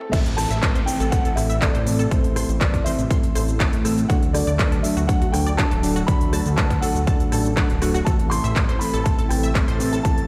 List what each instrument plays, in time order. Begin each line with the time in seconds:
Already playing: synth stab E3 A3 C4 A4, swell
0.01 mid tom
0.12 analog synth bass A1, analog synth pad C3 E3 A3 E4 A4, synth stab E3 A3 C4, synth pluck A4 A5, grand piano E5, kick, closed hi-hat, crash, downlifter, shaker
0.26 closed hi-hat
0.37 synth stab E3 A3 C4 A4, grand piano A5, cross-stick, open hi-hat, shaker
0.51 analog synth bass A1, synth pluck E5 E6, closed hi-hat, shaker
0.63 synth stab E3 A3 C4 B4, kick, clap, closed hi-hat, shaker
0.75 synth pluck C5 C6, closed hi-hat
0.86 synth stab E3 A3 C4 A4, grand piano G5, open hi-hat, shaker
1.00 analog synth bass A1, synth pluck A4 A5, closed hi-hat, shaker
1.11 synth stab E3 A3 C4 A4, grand piano F#5, kick, closed hi-hat, shaker
1.25 synth pluck A4 A5, closed hi-hat
1.35 analog synth bass A1, synth stab E3 A3 C4 A4, grand piano E5, cross-stick, open hi-hat, shaker
1.50 synth pluck E5 E6, closed hi-hat, shaker
1.60 synth stab E3 A3 C4 A4, grand piano D5, kick, clap, closed hi-hat, shaker
1.75 analog synth bass A2, synth pluck C5 C6, closed hi-hat
1.87 synth stab E3 A3 C4 A4, open hi-hat, shaker
1.99 synth pluck A4 A5, closed hi-hat, shaker
2.10 analog synth bass A1, synth stab E3 A3 C4 A4, grand piano C5, kick, closed hi-hat, shaker
2.24 closed hi-hat
2.36 synth stab E3 A3 C4 A4, synth pluck C6, cross-stick, open hi-hat, shaker
2.49 analog synth bass A1, closed hi-hat, shaker
2.60 synth stab E3 A3 C4 B4, grand piano D5, synth pluck A5 A6, kick, clap, closed hi-hat, shaker
2.74 kick, closed hi-hat
2.84 synth stab E3 A3 C4 A4, synth pluck C5 C6, grand piano E5, open hi-hat, shaker
2.98 analog synth bass A1, closed hi-hat, shaker
3.11 synth stab E3 A3 C4 A4, synth pluck C6, kick, closed hi-hat, shaker
3.23 closed hi-hat
3.35 analog synth bass A1, synth stab E3 A3 C4 A4, synth pluck C5 C6, cross-stick, open hi-hat, shaker
3.48 closed hi-hat, shaker
3.60 synth stab E3 A3 C4 A4, synth pluck A5 A6, kick, clap, closed hi-hat, shaker
3.73 analog synth bass A2, closed hi-hat
3.85 synth stab E3 A3 C4 A4, synth pluck E6, cross-stick, open hi-hat, shaker
3.98 closed hi-hat, shaker
4.08 analog synth bass D2, analog synth pad D3 F#3 F#4, synth stab F#3 A3 D4 A4, synth pluck F#4 F#5, grand piano F#5, kick, closed hi-hat, shaker
4.23 closed hi-hat
4.33 synth stab F#3 A3 D4 A4, grand piano D5, cross-stick, open hi-hat, shaker
4.47 analog synth bass D2, synth pluck D5 D6, closed hi-hat, shaker
4.59 synth stab F#3 A3 D4 B4, kick, clap, closed hi-hat, shaker
4.72 synth pluck A4 A5, closed hi-hat
4.83 synth stab F#3 A3 D4 A4, grand piano E5, open hi-hat, shaker
4.97 analog synth bass D2, synth pluck F#4 F#5, closed hi-hat, shaker
5.07 synth stab F#3 A3 D4 A4, grand piano F#5, kick, closed hi-hat, shaker
5.22 synth pluck F#4 F#5, closed hi-hat
5.32 analog synth bass D2, synth stab F#3 A3 D4 A4, grand piano G5, cross-stick, open hi-hat, shaker
5.46 synth pluck D5 D6, closed hi-hat, shaker
5.57 synth stab F#3 A3 D4 A4, grand piano A5, kick, clap, closed hi-hat, shaker
5.71 analog synth bass D1, synth pluck A4 A5, closed hi-hat
5.83 synth stab F#3 A3 D4 A4, open hi-hat, shaker
5.96 synth pluck F#4 F#5, closed hi-hat, shaker
6.07 analog synth bass D2, synth stab F#3 A3 D4 A4, grand piano B5, kick, closed hi-hat, shaker
6.21 closed hi-hat
6.33 synth stab F#3 A3 D4 A4, synth pluck A5 A6, cross-stick, open hi-hat, shaker
6.46 analog synth bass D2, closed hi-hat, shaker
6.56 synth stab F#3 A3 D4 B4, synth pluck F#5 F#6, grand piano A5, kick, clap, closed hi-hat, shaker
6.70 kick, closed hi-hat
6.81 synth stab F#3 A3 D4 A4, synth pluck A4 A5, grand piano F#5, open hi-hat, shaker
6.95 analog synth bass D2, closed hi-hat, shaker
7.07 synth stab F#3 A3 D4 A4, synth pluck A5 A6, kick, closed hi-hat, shaker
7.20 closed hi-hat
7.32 analog synth bass A1, synth stab F#3 A3 D4 A4, synth pluck A4 A5, cross-stick, open hi-hat, shaker
7.45 closed hi-hat, shaker
7.57 synth stab F#3 A3 D4 A4, synth pluck F#5 F#6, kick, clap, closed hi-hat, shaker
7.70 analog synth bass D1, closed hi-hat
7.82 synth stab F#3 A3 D4 A4, synth pluck F#4 F#5, cross-stick, open hi-hat, shaker
7.94 synth pluck F#4 F#5, closed hi-hat, shaker
8.05 analog synth bass A1, analog synth pad C3 E3 A3 E4, synth stab E3 A3 C4 A4, synth pluck A4 A5, grand piano A5, synth texture A6, kick, closed hi-hat, shaker
8.19 closed hi-hat
8.30 synth stab E3 A3 C4 A4, grand piano C6, cross-stick, open hi-hat, shaker
8.44 analog synth bass A1, synth pluck E5 E6, closed hi-hat, shaker
8.56 synth stab E3 A3 C4 B4, kick, clap, closed hi-hat, shaker
8.69 synth pluck C5 C6, closed hi-hat
8.79 synth stab E3 A3 C4 A4, grand piano B5, open hi-hat, shaker
8.94 analog synth bass A1, synth pluck A4 A5, closed hi-hat, shaker
9.04 synth stab E3 A3 C4 A4, grand piano A5, kick, closed hi-hat, shaker
9.18 synth pluck A4 A5, closed hi-hat
9.29 analog synth bass A1, synth stab E3 A3 C4 A4, grand piano G5, cross-stick, open hi-hat, shaker
9.43 synth pluck E5 E6, closed hi-hat, shaker
9.55 synth stab E3 A3 C4 A4, kick, clap, closed hi-hat, shaker
9.68 analog synth bass A2, synth pluck C5 C6, closed hi-hat
9.80 synth stab E3 A3 C4 A4, open hi-hat, shaker
9.93 synth pluck A4 A5, closed hi-hat, shaker
10.03 analog synth bass A1, synth stab E3 A3 C4 A4, grand piano A5, kick, closed hi-hat, shaker
10.18 closed hi-hat